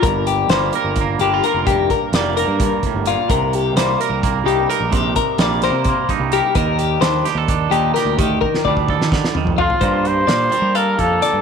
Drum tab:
HH |x-x-x-x-x-x-x-|x-x-x-x-x-x-x-|x-x-x-x-x-x-x-|x-x-x-x-x-x-x-|
SD |----o---------|----o---------|----o---------|----o-o-------|
T2 |--------------|--------------|--------------|--------------|
FT |--------------|--------------|--------------|--------------|
BD |o-------o-----|o-o-----o-o---|o-------o-----|o-o-----o-o---|

HH |x-x-x-x-x-x-x-|x-------------|x-x-x-x-x-x-x-|
SD |----o-o-----o-|---o---ooo----|----o---------|
T2 |--------------|----------o---|--------------|
FT |--------------|-----------ooo|--------------|
BD |o-------o-----|o-o-ooo-o-----|o---------o---|